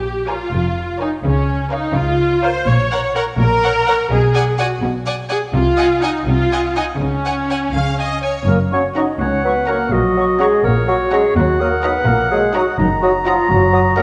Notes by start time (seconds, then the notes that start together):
Already playing: A#1 A#2 G4
0.28 F4 A#4 C#5 G#5
0.53 F1 F2
0.99 D#4 A#4 C#5 G#5
1.25 C#2 C#3 C#4
1.71 D#4 A#4 C#5 F5
1.96 C#2 C#3 F4
2.43 A#4 C5 C#5 F5
2.67 A#1 A#2 C#5
2.91 A#4 C#5 F#5
3.15 A#4 C#5 F#5
3.39 A#1 A#2 A#4
3.63 A#4 C#5 F#5
3.86 A#4 C#5 F#5
4.10 B1 B2 G#4
4.34 D5 F#5 G#5
4.58 F#4 D5 F#5 G#5
4.81 B1 B2
5.06 D5 F#5 G#5
5.29 G#4 D5 F#5 G#5
5.53 C2 C3 F4
5.77 D#5 F#5 G#5
6.02 D#4 D#5 F#5 G#5
6.27 C2 C3 F4
6.52 D#5 F#5 G#5
6.76 D#4 D#5 F#5 G#5
7.00 C#2 C#3 C#4
7.25 C#5 F#5 G#5
7.50 C#5 F#5 G#5
7.74 C#2 C#3 F5
7.99 D#5 G#5
8.23 C#5 G#5
8.47 F#1 F#2 A#3 A#4
8.72 F#3 C#4 C#5 C#6
8.95 F#3 C#4 D#4 D#5 F#5 A#5 C#6
9.19 C#2 C#4 C#5 F#5
9.44 F#3 B3 B4 C#6
9.67 F#3 A#3 C#4 A#4 F#5 A#5 C#6
9.91 A#1 A#2 F#3 F#4 D#5
10.17 F#3 C#6
10.40 F#3 G#3 C#4 G#4 F#5 A#5 C#6
10.64 A#1 A#2 A#3 A#4 C#5
10.88 F#3 F#4 C#6
11.11 F#3 G#3 C#4 G#4 F#5 A#5 C#6
11.36 D#2 F#3 F#4 F#5
11.60 F#3 A#3 A#4 D#6
11.83 F#3 B3 D#4 B4 F#5 A#5 D#6
12.07 A#1 A#2 A#3 A#4
12.31 F#3 G#3 G#4 D#6
12.54 F#3 D#4 F#4 F#5 A#5 D#6
12.78 F#1 F#2 D#3 D#4 A#5
13.02 F#3 F#4 D#6
13.26 F3 F#3 D#4 F4 F#5 A#5 D#6
13.49 F#1 F#2 F#3 F#4
13.73 F#3 D#6
13.97 F#3 A#3 D#4 A#4 F#5 A#5 D#6